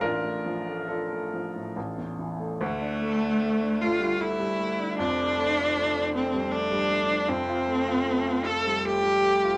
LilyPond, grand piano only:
<<
  \new Staff \with { instrumentName = "Grand piano" } { \time 3/4 \key d \minor \tempo 4 = 77 <d' f' bes'>4 <d' f' a'>4. r8 | r2. | r2. | r2. | }
  \new Staff \with { instrumentName = "Grand piano" } { \time 3/4 \key d \minor a,,16 a,16 f16 a8 a16 f16 a,16 a,,16 e,16 e16 a16 | d,16 d'16 a16 d'16 a16 d'16 a16 g16 a16 g16 a16 d'16 | <f,, f,>16 d'16 a16 d'16 a16 d'16 a16 g16 a16 g16 a16 d'16 | <f,, f,>16 f'16 a16 f'16 a16 f'16 a16 g16 a16 g16 a16 f'16 | }
>>